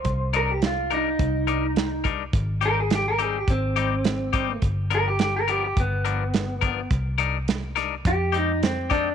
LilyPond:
<<
  \new Staff \with { instrumentName = "Clean electric guitar" } { \time 4/4 \key c \minor \tempo 4 = 105 c''8 bes'16 g'16 f'8 ees'2 r8 | r8 bes'16 aes'16 g'16 bes'16 aes'16 g'16 c'2 | r8 ais'16 g'16 g'16 ais'16 g'16 g'16 b2 | r2 g'8 ees'8 c'8 d'8 | }
  \new Staff \with { instrumentName = "Clean electric guitar" } { \time 4/4 \key c \minor r8 <g d' ees' bes'>8 r8 <g d' ees' bes'>8 r8 <g d' ees' bes'>8 r8 <g d' ees' bes'>8 | r8 <g c' ees' g'>8 r8 <g c' ees' g'>8 r8 <g c' ees' g'>8 r8 <g c' ees' g'>8 | r8 <f b d' ais'>8 r8 <f b d' ais'>8 r8 <f b d' ais'>8 r8 <f b d' ais'>8 | r8 <g d' ees' bes'>8 r8 <g d' ees' bes'>8 r8 <aes c' ees' g'>8 r8 <aes c' ees' g'>8 | }
  \new Staff \with { instrumentName = "Fingered electric bass" } { \clef bass \time 4/4 \key c \minor c,2 c,2 | aes,,2 aes,,2 | g,,2 g,,2 | c,2 f,2 | }
  \new DrumStaff \with { instrumentName = "Drums" } \drummode { \time 4/4 <hh bd>8 hh8 <hh sn>8 hh8 <hh bd>8 hh8 <hh sn>8 <hh bd>8 | <hh bd>8 hh8 <hh sn>8 hh8 <hh bd>8 hh8 <hh sn>8 <hh bd>8 | <hh bd>8 hh8 <hh sn>8 hh8 <hh bd>8 hh8 <hh sn>8 <hh bd>8 | <hh bd>8 hh8 <hh sn>8 <hh sn>8 <hh bd>8 hh8 <hh sn>8 <hh bd>8 | }
>>